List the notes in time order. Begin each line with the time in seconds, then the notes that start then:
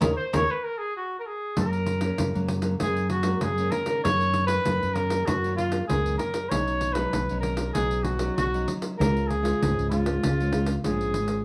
0.01 D#2 A#3 C#4 D#4 A#4 C#5 D#5, pandeiro
0.16 C5
0.33 D#2 A#3 C#4 D#4 A#4 C#5 D#5, pandeiro
0.51 B4
0.64 A#4
0.78 G#4
0.97 F#4
1.19 A#4
1.27 G#4
1.57 F#2 F#3 A#3 C#4 A#4, pandeiro
1.73 pandeiro
1.86 pandeiro
2.00 F#3 A#3 C#4, pandeiro
2.18 F#2 C#3, pandeiro
2.34 F#2 F#3 A#3 C#4, pandeiro
2.48 pandeiro
2.61 F#3 A#3 C#4, pandeiro
2.79 F#2 F#3 A#3 C#4 G#4, pandeiro
2.97 pandeiro
3.10 F#4, pandeiro
3.23 F#3 A#3 C#4, pandeiro
3.41 F#2 C#3 G#4, pandeiro
3.58 F#3 A#3 C#4, pandeiro
3.71 A#4, pandeiro
3.86 D#3 A#3 C#4, pandeiro
4.04 F#2 C#5, pandeiro
4.21 pandeiro
4.34 pandeiro
4.47 D#3 C#4 B4, pandeiro
4.65 F#2, pandeiro
4.83 F#2, pandeiro
4.94 D#3 A#3 C#4 A#4, pandeiro
5.10 pandeiro
5.26 F#2 F#4, pandeiro
5.44 D#3 A#3 C#4, pandeiro
5.56 F4, pandeiro
5.72 pandeiro
5.87 C#2 F#2 D#3 A#3 C#4 G#4, pandeiro
6.06 pandeiro
6.18 A#4, pandeiro
6.34 pandeiro
6.50 B1 B2 F#3 C#4 D#4 C#5, pandeiro
6.68 pandeiro
6.81 pandeiro
6.93 F#3 C#4 D#4 B4, pandeiro
7.13 B1 F#3, pandeiro
7.29 B1 F#3 C#4 D#4, pandeiro
7.40 A#4, pandeiro
7.57 pandeiro
7.73 B1 B2 F#3 C#4 D#4 G#4, pandeiro
7.91 pandeiro
8.03 F#4, pandeiro
8.19 F#3 C#4 D#4, pandeiro
8.37 B1 F#3 F#4, pandeiro
8.54 F#3 C#4 D#4, pandeiro
8.68 pandeiro
8.82 pandeiro
8.98 C#2 C#3 G#3 C#4 F4 A#4, pandeiro
9.17 pandeiro
9.27 G#4, pandeiro
9.43 G#3 C#4 F4, pandeiro
9.61 C#2 G#2, pandeiro
9.79 C#2, pandeiro
9.89 G#3 C#4 F4, pandeiro
10.06 pandeiro
10.23 C#2 C#3, pandeiro
10.40 G#3 C#4 F4, pandeiro
10.52 G#3 C#4 F4, pandeiro
10.66 pandeiro
10.84 A#1 G#2 G#3 C#4 F4 G#4, pandeiro
11.01 pandeiro
11.14 G#1, pandeiro
11.28 pandeiro